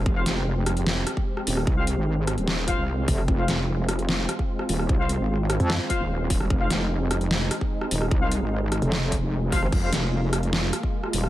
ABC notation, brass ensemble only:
X:1
M:4/4
L:1/16
Q:1/4=149
K:Fm
V:1 name="Brass ensemble"
z [Fcf] z12 z2 | z [Fcf] z8 [Fcf] z4 z | z [Fcf] z12 z2 | z [Fcf] z8 [Fcf] z4 z |
z [Fcf] z12 z2 | z [Fcf] z12 [Fcf] z | z [Fcf] z12 z2 |]